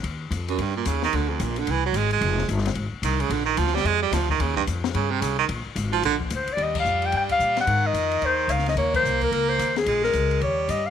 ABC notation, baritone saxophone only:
X:1
M:4/4
L:1/8
Q:"Swing" 1/4=220
K:Ebmix
V:1 name="Baritone saxophone" clef=bass
z3 _G,, =G,, B,, D, E, | =D, F,, B,, D, =E, _G, A, A,- | A,2 z4 E, D, | =D, E, F, G, A, G, F, E, |
D, G,, z2 D, C, D, E, | z3 F, =D, z3 | G,8 | E,8 |
B,8 | A,4 G,3 z |]